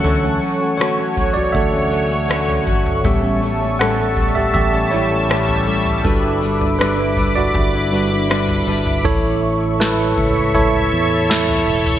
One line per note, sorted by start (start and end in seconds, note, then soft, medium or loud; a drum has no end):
0.00 0.38 D2 medium
0.00 0.23 D3 medium
0.00 0.76 E3 soft
0.00 0.77 F#3 soft
0.00 0.06 C#4 medium
0.00 3.01 A4 medium
0.00 0.81 A4 medium
0.00 3.01 C#5 medium
0.00 3.01 F#5 medium
0.00 6.01 C#6 medium
0.04 0.23 F#3 medium
0.04 0.24 A3 medium
0.04 0.23 C#4 medium
0.04 0.76 C#4 soft
0.04 0.22 F#4 medium
0.04 floor tom medium
0.23 0.41 A3 soft
0.23 0.41 C#4 soft
0.23 0.42 F#4 medium
0.41 0.60 F#3 medium
0.41 0.61 A3 medium
0.41 0.60 C#4 medium
0.41 0.59 F#4 medium
0.60 0.78 A3 soft
0.60 0.79 C#4 soft
0.60 0.79 F#4 soft
0.78 0.98 D3 medium
0.78 0.98 F#3 medium
0.78 0.98 A3 medium
0.78 0.97 C#4 medium
0.78 0.96 F#4 medium
0.78 1.33 F#4 medium
0.78 1.31 C#5 medium
0.78 cross-stick medium
0.97 1.16 A3 soft
0.97 1.16 C#4 soft
0.97 1.17 F#4 soft
1.16 1.73 F#3 soft
1.16 1.73 A3 medium
1.16 1.72 C#4 medium
1.16 1.71 F#4 medium
1.16 kick medium
1.16 floor tom soft
1.34 1.43 D5 medium
1.34 floor tom medium
1.38 1.46 F#4 medium
1.52 2.63 D2 medium
1.52 2.64 A4 medium
1.52 2.62 E5 medium
1.52 kick medium
1.52 floor tom soft
1.72 1.90 A3 soft
1.72 1.91 C#4 soft
1.72 1.92 F#4 soft
1.90 2.10 F#3 medium
1.90 2.11 A3 soft
1.90 2.10 C#4 medium
1.90 2.08 F#4 medium
2.10 2.28 A3 soft
2.10 2.28 C#4 soft
2.10 2.29 F#4 medium
2.28 2.66 D3 medium
2.28 2.65 F#3 medium
2.28 2.65 A3 medium
2.28 2.66 C#4 medium
2.28 2.67 F#4 medium
2.28 cross-stick medium
2.49 floor tom medium
2.66 3.05 G1 medium
2.66 3.04 F#3 medium
2.66 3.03 A3 medium
2.66 3.04 C#4 medium
2.66 3.05 F#4 medium
2.66 kick medium
2.86 floor tom medium
3.04 4.51 A1 medium
3.04 3.23 A2 medium
3.04 3.23 E3 medium
3.04 9.00 G3 medium
3.04 3.23 G3 medium
3.04 3.55 G3 soft
3.04 3.23 A3 medium
3.04 3.55 B3 soft
3.04 3.22 C#4 medium
3.04 3.55 C#4 medium
3.04 3.76 G4 medium
3.04 3.21 A4 medium
3.04 9.01 E5 medium
3.04 3.82 E5 medium
3.04 6.01 A5 medium
3.04 kick medium
3.04 floor tom medium
3.22 3.40 G3 soft
3.22 3.41 A3 soft
3.22 3.42 C#4 soft
3.22 3.42 A4 medium
3.41 3.60 G3 medium
3.41 3.60 A3 medium
3.41 3.60 C#4 medium
3.41 3.59 A4 medium
3.60 3.79 G3 soft
3.60 3.79 A3 soft
3.60 3.79 C#4 soft
3.60 3.79 A4 soft
3.79 3.98 A2 medium
3.79 3.98 E3 medium
3.79 3.99 G3 medium
3.79 3.98 A3 medium
3.79 3.97 C#4 medium
3.79 4.33 A4 medium
3.79 3.97 A4 medium
3.79 4.37 F#5 medium
3.79 cross-stick loud
3.98 4.15 G3 soft
3.98 4.16 A3 soft
3.98 4.17 C#4 soft
3.98 4.17 A4 soft
4.16 4.73 G3 medium
4.16 4.73 A3 medium
4.16 4.72 C#4 medium
4.16 4.72 A4 medium
4.16 kick medium
4.16 floor tom medium
4.35 4.45 G4 medium
4.35 4.44 E5 medium
4.35 floor tom medium
4.54 6.01 A1 medium
4.54 4.90 G4 medium
4.54 4.93 E5 medium
4.54 kick medium
4.54 floor tom medium
4.73 4.90 G3 soft
4.73 4.91 A3 soft
4.73 4.92 C#4 soft
4.73 4.92 A4 soft
4.91 5.11 G3 medium
4.91 5.11 A3 medium
4.91 5.10 C#4 medium
4.91 5.64 E4 medium
4.91 5.09 A4 medium
4.91 5.63 C#5 medium
5.10 5.28 G3 soft
5.10 5.29 A3 soft
5.10 5.29 C#4 soft
5.10 5.29 A4 soft
5.29 5.67 A2 medium
5.29 5.67 E3 medium
5.29 5.65 G3 medium
5.29 5.66 A3 medium
5.29 5.67 C#4 medium
5.29 5.68 A4 medium
5.29 cross-stick loud
5.49 floor tom medium
5.66 6.02 G3 medium
5.66 6.04 A3 medium
5.66 6.05 C#4 medium
5.66 6.05 A4 medium
5.86 floor tom medium
6.03 7.51 G1 medium
6.03 6.23 G3 medium
6.03 6.54 G3 soft
6.03 6.23 D4 medium
6.03 6.76 D4 medium
6.03 6.23 E4 medium
6.03 6.55 F#4 medium
6.03 6.82 A4 medium
6.03 6.21 B4 medium
6.03 9.01 B5 medium
6.03 9.01 D6 medium
6.03 kick loud
6.03 floor tom medium
6.23 6.41 D4 soft
6.23 6.42 E4 medium
6.23 6.42 B4 medium
6.41 6.61 G3 medium
6.41 6.61 D4 medium
6.41 6.60 E4 medium
6.41 6.59 B4 medium
6.60 6.79 D4 soft
6.60 6.79 E4 soft
6.60 6.79 B4 soft
6.60 floor tom medium
6.79 6.98 G3 medium
6.79 6.99 D4 medium
6.79 7.32 D4 medium
6.79 6.98 E4 medium
6.79 7.37 B4 medium
6.79 6.96 B4 medium
6.79 cross-stick loud
6.97 7.16 D4 soft
6.97 7.17 E4 soft
6.97 7.17 B4 soft
7.16 7.73 G3 medium
7.16 7.74 D4 medium
7.16 7.73 E4 medium
7.16 7.72 B4 soft
7.16 kick medium
7.16 floor tom medium
7.35 7.92 F#4 medium
7.35 8.63 D5 loud
7.35 floor tom medium
7.54 8.63 G1 loud
7.54 kick medium
7.54 floor tom medium
7.73 7.91 D4 soft
7.73 7.92 E4 soft
7.73 7.92 B4 medium
7.91 8.10 G3 medium
7.91 8.26 G3 soft
7.91 8.11 D4 medium
7.91 8.26 D4 soft
7.91 8.10 E4 medium
7.91 8.26 F#4 soft
7.91 8.09 B4 medium
8.10 8.28 D4 soft
8.10 8.29 E4 medium
8.10 8.29 B4 medium
8.29 8.65 G3 medium
8.29 8.66 D4 medium
8.29 8.67 E4 medium
8.29 8.67 B4 medium
8.29 cross-stick medium
8.49 floor tom medium
8.66 9.02 G1 medium
8.66 9.04 G3 medium
8.66 9.05 D4 medium
8.66 9.05 E4 medium
8.66 9.05 B4 medium
8.87 floor tom medium
9.04 10.13 A1 medium
9.04 10.13 A2 medium
9.04 9.76 E4 medium
9.04 11.99 A4 medium
9.04 9.76 A4 medium
9.04 11.99 C#5 medium
9.04 9.76 C#5 medium
9.04 11.99 E5 medium
9.04 11.99 C#6 loud
9.04 kick loud
9.04 floor tom medium
9.04 crash medium
9.80 10.51 E4 medium
9.80 10.51 A4 medium
9.80 10.51 B4 loud
9.80 snare loud
10.17 10.88 C#2 medium
10.17 kick medium
10.17 floor tom medium
10.36 floor tom medium
10.55 11.26 E4 medium
10.55 11.26 A4 medium
10.55 11.26 C#5 medium
10.55 kick medium
10.55 floor tom medium
10.93 11.64 E2 medium
11.30 11.99 E4 medium
11.30 11.99 A4 medium
11.30 11.99 E5 medium
11.30 snare loud
11.49 floor tom medium
11.68 11.99 E1 medium
11.86 floor tom medium